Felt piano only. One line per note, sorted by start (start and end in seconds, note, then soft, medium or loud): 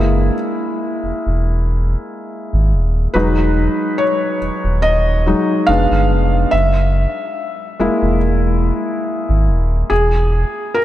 0.00 0.34 G#3 medium
0.00 0.35 A#3 medium
0.00 0.35 E4 medium
3.14 4.37 F#3 medium
3.14 4.38 G#3 soft
3.14 4.38 D#4 medium
3.14 4.01 B4 medium
3.98 4.79 C#5 medium
4.82 5.70 D#5 medium
5.26 5.64 F#3 soft
5.26 5.65 G#3 soft
5.26 5.65 D#4 medium
5.67 6.49 G#3 medium
5.67 6.49 B3 soft
5.67 6.49 D4 medium
5.67 6.54 F5 loud
6.51 8.17 E5 medium
7.80 9.87 G#3 medium
7.80 9.87 A#3 medium
7.80 9.87 E4 medium
9.90 10.77 G#4 medium
10.74 10.85 A#4 medium